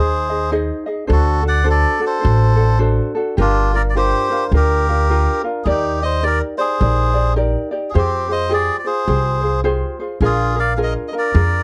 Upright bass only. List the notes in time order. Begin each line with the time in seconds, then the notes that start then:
Already playing: D#2
1.10 D2
2.25 A1
3.38 G1
4.52 D2
5.66 D#2
6.81 A#1
7.95 F2
9.08 C2
10.21 A#1
11.35 F2